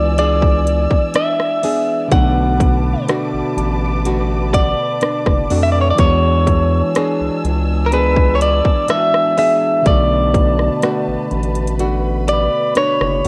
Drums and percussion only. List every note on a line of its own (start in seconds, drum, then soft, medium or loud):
0.18 closed hi-hat medium
0.42 kick medium
0.67 closed hi-hat medium
0.91 kick medium
1.14 cross-stick loud
1.14 closed hi-hat medium
1.40 cross-stick medium
1.63 open hi-hat medium
2.12 kick loud
2.12 closed hi-hat medium
2.60 kick medium
2.60 closed hi-hat medium
3.08 cross-stick loud
3.08 closed hi-hat medium
3.58 closed hi-hat medium
4.05 closed hi-hat medium
4.54 kick medium
4.54 closed hi-hat medium
5.01 cross-stick loud
5.01 closed hi-hat medium
5.26 kick loud
5.26 cross-stick medium
5.50 open hi-hat medium
5.98 kick loud
5.98 closed hi-hat medium
6.47 kick medium
6.47 closed hi-hat medium
6.95 cross-stick loud
6.95 closed hi-hat medium
7.45 closed hi-hat medium
7.92 closed hi-hat medium
8.16 kick medium
8.41 closed hi-hat medium
8.65 kick medium
8.88 cross-stick loud
8.88 closed hi-hat medium
9.14 cross-stick loud
9.37 open hi-hat medium
9.86 kick loud
9.86 closed hi-hat medium
10.34 kick medium
10.34 closed hi-hat medium
10.59 cross-stick medium
10.82 cross-stick loud
10.82 closed hi-hat medium
11.31 closed hi-hat soft
11.43 closed hi-hat soft
11.55 closed hi-hat medium
11.67 closed hi-hat medium
11.79 closed hi-hat medium
12.28 closed hi-hat medium
12.75 cross-stick loud
12.75 closed hi-hat medium
13.01 cross-stick loud
13.25 open hi-hat medium